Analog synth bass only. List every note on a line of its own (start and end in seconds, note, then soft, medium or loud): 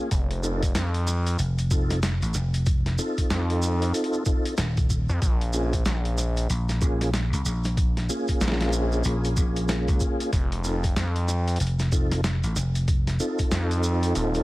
0.11 0.73 F1 loud
0.75 1.37 F2 loud
3.31 3.92 F2 loud
5.09 5.20 F2 loud
5.22 5.84 A#1 loud
5.86 6.48 A#1 loud
8.41 9.03 A#1 loud
10.33 10.94 F1 loud
10.96 11.58 F2 loud
13.52 14.14 F2 loud
14.16 14.43 D#1 loud